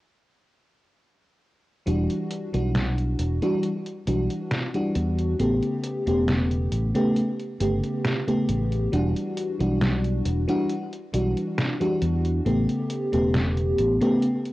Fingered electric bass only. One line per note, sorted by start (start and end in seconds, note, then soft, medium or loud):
1.87 2.07 E1 medium
2.54 3.14 B1 medium
3.19 3.39 E1 medium
4.07 4.27 B1 medium
4.96 5.33 E2 medium
5.40 5.59 A1 medium
6.07 6.67 E1 medium
6.72 6.92 A1 medium
7.60 7.80 G1 medium
8.49 8.87 A1 medium
8.93 9.13 E1 medium
9.60 10.20 B1 medium
10.25 10.45 E1 medium
11.14 11.33 B1 medium
12.02 12.40 E2 medium
12.46 12.65 A1 medium
13.13 13.73 E1 medium
13.79 13.98 A1 medium